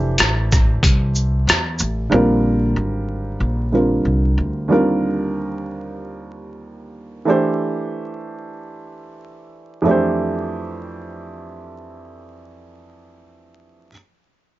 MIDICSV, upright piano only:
0, 0, Header, 1, 2, 480
1, 0, Start_track
1, 0, Key_signature, -1, "major"
1, 0, Tempo, 645161
1, 1581, Time_signature, 4, 2, 24, 8
1, 10859, End_track
2, 0, Start_track
2, 0, Title_t, "Upright piano"
2, 0, Program_c, 0, 0
2, 0, Note_on_c, 0, 52, 74
2, 0, Note_on_c, 0, 57, 65
2, 0, Note_on_c, 0, 62, 67
2, 0, Note_on_c, 0, 67, 73
2, 0, Note_on_c, 0, 72, 80
2, 1541, Note_off_c, 0, 52, 0
2, 1546, Note_off_c, 0, 57, 0
2, 1551, Note_off_c, 0, 62, 0
2, 1555, Note_off_c, 0, 67, 0
2, 1560, Note_off_c, 0, 72, 0
2, 1560, Note_on_c, 0, 50, 75
2, 1569, Note_on_c, 0, 55, 69
2, 1574, Note_on_c, 0, 60, 65
2, 1584, Note_on_c, 0, 65, 68
2, 1593, Note_on_c, 0, 70, 81
2, 2746, Note_off_c, 0, 50, 0
2, 2751, Note_off_c, 0, 55, 0
2, 2753, Note_off_c, 0, 60, 0
2, 2758, Note_off_c, 0, 65, 0
2, 2763, Note_off_c, 0, 70, 0
2, 2768, Note_on_c, 0, 50, 58
2, 2772, Note_on_c, 0, 55, 49
2, 2780, Note_on_c, 0, 60, 51
2, 2784, Note_on_c, 0, 65, 50
2, 2788, Note_on_c, 0, 70, 58
2, 3479, Note_off_c, 0, 50, 0
2, 3483, Note_off_c, 0, 55, 0
2, 3483, Note_on_c, 0, 39, 69
2, 3490, Note_on_c, 0, 50, 69
2, 3491, Note_off_c, 0, 60, 0
2, 3494, Note_on_c, 0, 55, 64
2, 3499, Note_off_c, 0, 65, 0
2, 3502, Note_on_c, 0, 60, 68
2, 3503, Note_off_c, 0, 70, 0
2, 3510, Note_on_c, 0, 65, 67
2, 3515, Note_on_c, 0, 70, 80
2, 5382, Note_off_c, 0, 39, 0
2, 5386, Note_off_c, 0, 50, 0
2, 5388, Note_off_c, 0, 55, 0
2, 5392, Note_off_c, 0, 60, 0
2, 5396, Note_off_c, 0, 65, 0
2, 5397, Note_on_c, 0, 52, 70
2, 5398, Note_off_c, 0, 70, 0
2, 5408, Note_on_c, 0, 57, 65
2, 5416, Note_on_c, 0, 62, 64
2, 5424, Note_on_c, 0, 67, 66
2, 5429, Note_on_c, 0, 72, 77
2, 7299, Note_off_c, 0, 52, 0
2, 7305, Note_off_c, 0, 57, 0
2, 7306, Note_on_c, 0, 41, 73
2, 7309, Note_off_c, 0, 62, 0
2, 7313, Note_off_c, 0, 67, 0
2, 7315, Note_off_c, 0, 72, 0
2, 7319, Note_on_c, 0, 52, 69
2, 7332, Note_on_c, 0, 57, 64
2, 7343, Note_on_c, 0, 62, 66
2, 7358, Note_on_c, 0, 67, 63
2, 7373, Note_on_c, 0, 72, 77
2, 10330, Note_off_c, 0, 41, 0
2, 10336, Note_off_c, 0, 52, 0
2, 10343, Note_off_c, 0, 57, 0
2, 10348, Note_off_c, 0, 62, 0
2, 10356, Note_off_c, 0, 67, 0
2, 10363, Note_off_c, 0, 72, 0
2, 10859, End_track
0, 0, End_of_file